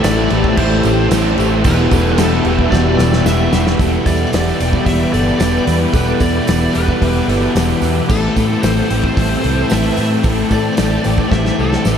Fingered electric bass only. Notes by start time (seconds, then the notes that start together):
0.04 A1
0.31 A1
0.57 A1
0.84 A1
1.11 A1
1.39 A1
1.65 E1
1.91 E1
2.18 E1
2.45 E1
2.72 E1
2.99 E1
3.25 E1
3.52 E1
3.79 E1
4.06 E2
4.33 E1
4.60 E1
4.86 E1
5.13 G1
5.40 E1
5.67 E2
5.93 E1
6.21 E2
6.48 E1
6.75 E1
7.02 E1
7.28 G1
7.55 E1
7.82 E2
8.10 A1
8.36 A2
8.63 A1
8.90 A1
9.17 A1
9.44 C2
9.72 A1
9.98 A2
10.24 A1
10.51 A2
10.79 A1
11.06 A1
11.32 A1
11.59 C2
11.85 A1